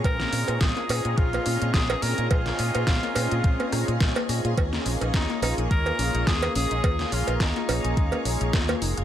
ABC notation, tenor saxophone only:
X:1
M:4/4
L:1/8
Q:"Swing 16ths" 1/4=106
K:Ebdor
V:1 name="Tenor saxophone"
B2 A2 F2 A B | F6- F z | z2 E E B2 A A- | A F E4- E z |]